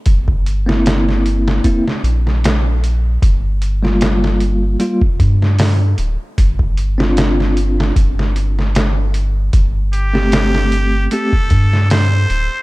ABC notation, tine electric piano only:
X:1
M:4/4
L:1/16
Q:"Swing 16ths" 1/4=76
K:Gdor
V:1 name="Tine electric piano"
z3 [B,CE]4- [B,CE] [B,CE] z6 z | z3 [G,B,F]4- [G,B,F] [G,B,F] z6 z | z3 [CDF]4- [CDF] z8 | z3 [A,CG]4- [A,CG] [A,CG] z6 z |]